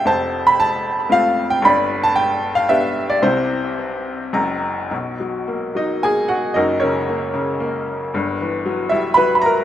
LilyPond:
<<
  \new Staff \with { instrumentName = "Upright piano" } { \time 3/4 \key c \major \tempo 4 = 113 << { a''8. b''16 a''4 f''8. g''16 | b''8. a''16 g''8. f''16 e''8. d''16 | c''2 bes''4 | \key b \major r4. dis''8 gis''8 fis''8 |
dis''8 cis''4 r4. | r4. e''8 b''16. b''32 ais''8 | } \\ { c''4. r4. | d''4. r4. | e'2 r4 | r4. dis'8 gis'8 fis'8 |
<dis' fis' ais'>8 <cis' ais'>4 r4. | r4. e'8 b'8 ais'8 | } >> }
  \new Staff \with { instrumentName = "Upright piano" } { \clef bass \time 3/4 \key c \major <f,, f,>2 <a c' f'>4 | <g,, g,>2 <b d' g'>4 | <c, c>2 <fis,, fis,>4 | \key b \major <b,, b,>8 fis8 ais8 fis8 ais4 |
<fis,, fis,>8 cis8 ais8 cis8 ais4 | <g,, g,>8 e8 fis8 g8 fis4 | }
>>